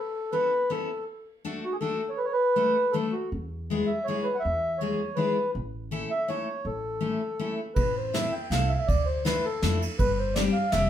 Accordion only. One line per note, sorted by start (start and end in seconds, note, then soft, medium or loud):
0.00 0.34 A4 medium
0.32 0.71 B4 medium
0.70 1.05 A4 medium
1.64 1.73 F#4 medium
1.72 1.77 G#4 medium
1.81 2.10 A4 loud
2.09 2.19 C#5 medium
2.17 2.26 B4 medium
2.25 2.33 C#5 medium
2.32 2.95 B4 loud
2.92 3.13 A4 medium
3.12 3.30 F#4 medium
3.86 4.06 E5 medium
4.04 4.25 C#5 medium
4.23 4.36 B4 medium
4.35 4.43 F#5 medium
4.40 4.80 E5 loud
4.78 5.18 C#5 medium
5.15 5.51 B4 medium
6.11 6.29 E5 loud
6.29 6.66 C#5 medium
6.66 7.55 A4 medium
7.75 7.96 B4 medium
7.96 8.15 C5 medium
8.14 8.34 E5 medium
8.32 8.51 G5 medium
8.51 8.71 F5 medium
8.69 8.74 E5 medium
8.73 8.79 F5 medium
8.78 8.88 E5 medium
8.87 9.08 D5 medium
9.06 9.23 C5 medium
9.25 9.45 B4 medium
9.45 9.79 A4 medium
9.99 10.18 B4 medium
10.19 10.35 C5 medium
10.34 10.43 D5 medium
10.53 10.72 F5 medium
10.71 10.90 E5 loud